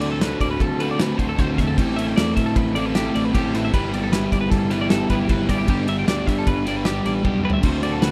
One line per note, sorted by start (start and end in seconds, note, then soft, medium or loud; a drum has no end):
0.00 0.34 D2 medium
0.00 0.20 D3 medium
0.00 1.78 D3 medium
0.00 1.78 G3 medium
0.00 0.20 A3 medium
0.00 0.21 C4 medium
0.00 0.21 F#4 medium
0.00 0.23 A4 medium
0.00 0.11 D5 medium
0.00 ride medium
0.12 0.22 A4 medium
0.20 0.99 A3 medium
0.20 0.81 C4 medium
0.20 0.80 F#4 medium
0.20 0.79 A4 medium
0.20 0.41 B4 medium
0.20 snare loud
0.20 ride loud
0.40 0.58 D2 loud
0.40 0.50 D5 medium
0.40 kick medium
0.40 ride medium
0.51 0.61 B4 medium
0.60 1.13 D2 loud
0.60 0.80 A4 medium
0.60 kick loud
0.60 ride medium
0.80 1.00 C4 medium
0.80 1.00 F#4 medium
0.80 1.01 A4 medium
0.80 0.90 B4 medium
0.80 ride medium
0.91 1.01 D5 medium
0.99 1.37 D3 loud
0.99 1.38 A3 medium
0.99 1.20 C4 loud
0.99 1.18 F#4 loud
0.99 1.17 A4 loud
0.99 1.18 B4 medium
0.99 snare loud
0.99 ride loud
1.18 1.37 D2 medium
1.18 1.38 C4 medium
1.18 1.39 F#4 medium
1.18 1.39 A4 medium
1.18 1.28 C5 medium
1.18 kick medium
1.18 ride medium
1.29 1.39 A4 medium
1.38 1.56 D2 loud
1.38 1.76 D3 loud
1.38 1.76 A3 loud
1.38 1.60 C4 loud
1.38 1.58 F#4 loud
1.38 1.57 A4 loud
1.38 1.58 C5 medium
1.38 kick loud
1.38 snare soft
1.38 ride loud
1.58 1.76 E2 loud
1.58 1.77 C4 medium
1.58 1.77 F#4 medium
1.58 1.77 A4 medium
1.58 1.68 E5 medium
1.58 kick medium
1.58 snare soft
1.58 ride medium
1.67 1.77 A4 medium
1.77 2.13 A1 loud
1.77 2.16 A3 medium
1.77 1.99 C4 medium
1.77 1.99 E4 loud
1.77 1.97 G4 medium
1.77 1.97 A4 loud
1.77 kick loud
1.77 ride loud
1.97 2.17 C4 medium
1.97 2.18 E4 medium
1.97 2.18 A4 medium
1.97 2.07 E5 medium
1.97 ride medium
2.07 2.16 G5 medium
2.16 2.35 E2 medium
2.16 2.94 A3 medium
2.16 2.77 C4 medium
2.16 2.77 E4 medium
2.16 2.74 A4 medium
2.16 2.36 D5 medium
2.16 snare loud
2.16 ride loud
2.36 2.54 A2 loud
2.36 2.46 E5 medium
2.36 kick medium
2.36 snare soft
2.36 ride medium
2.46 2.56 A4 medium
2.56 3.08 A1 loud
2.56 2.75 B4 medium
2.56 kick loud
2.56 ride loud
2.75 2.95 C4 medium
2.75 2.96 E4 medium
2.75 2.97 A4 medium
2.75 2.86 D5 medium
2.75 ride medium
2.86 2.95 B4 medium
2.95 3.32 A3 loud
2.95 3.15 C4 loud
2.95 3.15 E4 loud
2.95 3.15 G4 medium
2.95 3.13 A4 loud
2.95 snare loud
2.95 ride loud
3.14 3.32 A1 loud
3.14 3.34 C4 medium
3.14 3.35 E4 medium
3.14 3.35 A4 medium
3.14 3.25 D5 medium
3.14 ride medium
3.25 3.34 B4 medium
3.33 3.69 A1 loud
3.33 3.72 A3 loud
3.33 3.55 C4 loud
3.33 3.54 E4 loud
3.33 3.55 G4 medium
3.33 3.52 A4 loud
3.33 kick loud
3.33 ride loud
3.53 3.73 C4 medium
3.53 3.74 E4 medium
3.53 3.72 A4 medium
3.53 3.64 B4 medium
3.53 snare soft
3.53 ride medium
3.65 3.74 E5 medium
3.73 4.26 G1 loud
3.73 4.12 G3 medium
3.73 3.94 B3 loud
3.73 3.93 E4 loud
3.73 3.91 G4 loud
3.73 3.93 B4 loud
3.73 kick loud
3.73 ride loud
3.92 4.12 B3 medium
3.92 4.13 E4 medium
3.92 4.14 G4 medium
3.92 4.03 D5 medium
3.92 ride medium
4.03 4.13 A4 medium
4.12 4.89 G3 medium
4.12 4.72 B3 medium
4.12 4.72 E4 medium
4.12 4.70 G4 medium
4.12 4.32 B4 medium
4.12 snare loud
4.12 ride loud
4.32 4.50 G1 medium
4.32 4.41 D5 medium
4.32 kick medium
4.32 snare soft
4.32 ride medium
4.41 4.50 B4 medium
4.50 5.04 G1 loud
4.50 4.71 A4 medium
4.50 kick loud
4.50 snare soft
4.50 ride loud
4.70 4.90 B3 medium
4.70 4.91 E4 medium
4.70 4.93 G4 medium
4.70 4.81 B4 medium
4.70 snare soft
4.70 ride medium
4.81 4.91 D5 medium
4.89 5.27 G3 medium
4.89 5.10 B3 loud
4.89 5.11 E4 loud
4.89 5.09 G4 loud
4.89 5.10 A4 medium
4.89 snare loud
4.89 ride loud
5.09 5.27 G1 medium
5.09 5.27 B3 medium
5.09 5.29 E4 medium
5.09 5.30 G4 medium
5.09 5.19 B4 medium
5.09 kick medium
5.09 snare soft
5.09 ride medium
5.19 5.30 G4 medium
5.27 5.47 G1 loud
5.27 5.67 G3 loud
5.27 5.50 B3 medium
5.27 5.49 E4 loud
5.27 5.48 G4 loud
5.27 5.49 B4 medium
5.27 kick loud
5.27 ride loud
5.48 5.67 G1 medium
5.48 5.67 B3 medium
5.48 5.68 E4 medium
5.48 5.69 G4 medium
5.48 5.59 D5 medium
5.48 kick medium
5.48 snare soft
5.48 ride medium
5.58 5.68 G4 medium
5.67 6.03 G1 loud
5.67 6.06 G3 loud
5.67 5.88 B3 loud
5.67 5.88 D4 loud
5.67 5.89 G4 loud
5.67 5.86 G4 loud
5.67 kick loud
5.67 ride loud
5.86 6.07 B3 medium
5.86 6.08 D4 medium
5.86 6.09 G4 medium
5.86 5.98 E5 medium
5.86 ride medium
5.99 6.07 G5 medium
6.06 6.25 D2 medium
6.06 6.85 G3 medium
6.06 6.67 B3 medium
6.06 6.67 D4 medium
6.06 6.65 G4 medium
6.06 6.27 D5 medium
6.06 snare loud
6.06 ride loud
6.27 6.45 G2 loud
6.27 6.37 E5 medium
6.27 kick medium
6.27 snare soft
6.27 ride medium
6.39 6.48 A4 medium
6.47 6.99 G1 medium
6.47 6.67 B4 medium
6.47 kick loud
6.47 ride loud
6.66 6.85 B3 medium
6.66 6.86 D4 medium
6.66 6.87 G4 medium
6.66 6.76 D5 medium
6.66 snare soft
6.66 ride medium
6.76 6.86 B4 medium
6.85 7.23 G3 medium
6.85 7.05 B3 medium
6.85 7.05 D4 medium
6.85 7.05 G4 medium
6.85 7.03 G4 loud
6.85 snare loud
6.85 ride loud
7.04 7.23 A1 medium
7.04 7.23 B3 medium
7.04 7.25 D4 medium
7.04 7.25 G4 medium
7.04 7.14 D5 medium
7.04 snare soft
7.04 ride medium
7.14 7.24 B4 medium
7.23 7.42 B1 medium
7.23 7.61 G3 medium
7.23 7.44 B3 medium
7.23 7.43 D4 loud
7.23 7.44 G4 medium
7.23 7.42 G4 medium
7.23 kick loud
7.38 mid tom medium
7.43 7.63 D2 medium
7.43 7.63 B3 medium
7.43 7.63 D4 medium
7.43 7.64 G4 medium
7.43 7.53 B4 medium
7.50 7.63 E5 medium
7.50 floor tom loud
7.61 8.11 D2 loud
7.61 8.01 D3 medium
7.61 7.84 A3 loud
7.61 7.83 C4 loud
7.61 7.81 F#4 loud
7.61 7.83 C5 loud
7.61 kick loud
7.61 crash loud
7.61 ride loud
7.82 8.03 A3 medium
7.82 8.03 C4 medium
7.82 8.03 F#4 medium
7.82 7.93 D5 medium
7.82 ride medium
7.92 8.03 A4 medium
8.01 8.11 D3 medium
8.01 8.11 A3 medium
8.01 8.11 C4 medium
8.01 8.11 F#4 medium
8.01 8.11 B4 medium
8.01 snare loud
8.01 ride loud